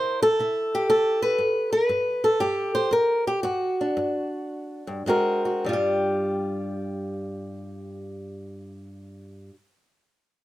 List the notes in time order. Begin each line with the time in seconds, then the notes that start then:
Already playing: C3 E4 A#4 C5
0.22 A4
0.39 C3 E4
0.75 G4
0.90 C3 A4
1.22 B4
1.38 G2
1.73 B4
1.89 G2
2.24 A4
2.40 G2 G4
2.75 C5
2.91 G2 A#4
3.27 G4
3.43 G2 F#4
3.81 D4
3.97 G2
4.87 G2
5.06 G#2 G#3 C4 F#4 A#4
5.45 F#4
5.64 G2 G3
5.69 F4
5.73 G4